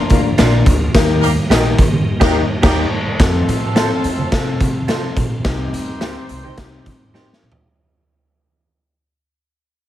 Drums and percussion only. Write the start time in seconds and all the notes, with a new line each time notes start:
0.10 kick, closed hi-hat, muted conga, low conga
0.38 snare, closed hi-hat, high conga
0.66 kick, closed hi-hat, high conga
0.80 high conga
0.95 kick, snare, closed hi-hat
1.21 closed hi-hat, muted conga
1.50 snare, closed hi-hat, high conga
1.79 kick, closed hi-hat
1.92 low conga
2.21 kick, snare, crash
2.63 kick, snare, crash
3.20 kick, snare, closed hi-hat, muted conga
3.49 closed hi-hat
3.76 snare, closed hi-hat, high conga
4.04 closed hi-hat
4.19 low conga
4.32 kick, snare, closed hi-hat, muted conga
4.60 kick, closed hi-hat, muted conga, low conga
4.88 snare, closed hi-hat, high conga
5.17 kick, closed hi-hat, high conga
5.45 kick, snare, closed hi-hat, muted conga
5.74 closed hi-hat, muted conga
6.01 snare, closed hi-hat, high conga
6.29 closed hi-hat
6.45 low conga
6.58 kick, snare, closed hi-hat, muted conga
6.86 kick, closed hi-hat, muted conga, low conga
7.14 snare, high conga
7.33 snare
7.43 high conga
7.52 floor tom